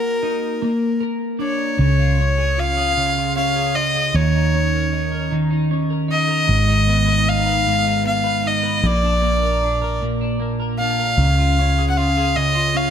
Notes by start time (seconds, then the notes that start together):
Already playing: A#3 F#4 A#4
0.23 D#4
0.62 A#3
1.01 A#4
1.39 D4 C#5
1.79 C#2 C#3
1.99 F4
2.18 C#4
2.38 G#4
2.58 F4 F5
2.77 G#4
2.97 C#3
3.17 F4
3.36 C#4 F5
3.56 G#4
3.75 F4 D#5
3.95 G#4
4.14 D#2 D#3 C#5
4.35 D#4
4.54 C#4
4.73 A#4
4.92 D#4
5.12 A#4
5.32 D#3
5.51 D#4
5.71 C#4
5.90 A#4
6.08 D#4 D#5
6.28 A#4
6.47 G#1 G#2
6.67 D#4
6.87 B3
7.06 B4
7.26 D#4 F5
7.46 B4
7.67 G#2
7.85 D#4
8.04 B3 F5
8.24 B4
8.44 D#4 D#5
8.63 B4
8.83 A#1 A#2 D5
9.03 D4
9.22 A#3
9.43 A#4
9.62 D4
9.82 A#4
10.02 A#2
10.21 D4
10.40 A#3
10.60 A#4
10.79 D4 F5
11.00 A#4
11.18 C#2 C#3
11.38 F4
11.59 C#4
11.78 G#4
11.90 F#5
11.97 F4 F5
12.17 G#4
12.36 C#3 D#5
12.55 F4
12.75 C#4 F5